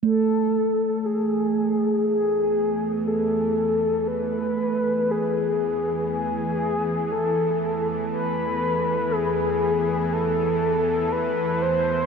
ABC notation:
X:1
M:4/4
L:1/16
Q:1/4=60
K:E
V:1 name="Soft synth lead"
A4 G4 G4 A4 | B4 G4 G4 A3 z | B4 G4 A4 B2 =c2 |]
V:2 name="Singing bowl"
A,16- | A,16- | A,16 |]
V:3 name="Synth drone" clef=bass
[E,,E,]16- | [E,,E,]16- | [E,,E,]16 |]